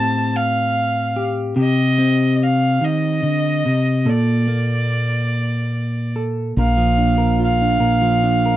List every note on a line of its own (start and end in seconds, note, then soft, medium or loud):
0.00 1.53 A2 medium
0.00 1.54 C4 soft
0.00 1.16 G4 soft
0.00 0.38 A5 medium
0.36 1.28 F5 medium
1.16 1.56 G4 soft
1.56 2.81 C3 medium
1.56 4.05 G4 soft
1.60 2.35 D#5 medium
1.99 4.01 C4 soft
2.35 2.44 D#5 soft
2.43 2.85 F5 medium
2.81 3.23 D#3 soft
2.81 4.11 D#5 medium
3.23 3.64 D3 soft
3.66 4.07 C3 soft
4.05 6.51 A#2 medium
4.05 6.15 A4 soft
4.05 6.17 D5 medium
4.48 6.97 A#3 soft
6.16 6.52 A4 soft
6.57 8.57 A#1 medium
6.57 7.78 A#2 medium
6.57 7.17 A#4 soft
6.57 7.38 F5 medium
6.77 8.01 F3 medium
6.98 7.60 D4 soft
7.18 7.79 A#4 soft
7.40 8.57 F4 soft
7.40 8.57 F5 medium
7.62 8.22 D4 soft
7.80 8.57 A#2 medium
7.80 8.44 A#4 soft
8.02 8.57 F3 soft
8.23 8.57 D4 soft
8.46 8.57 A#4 medium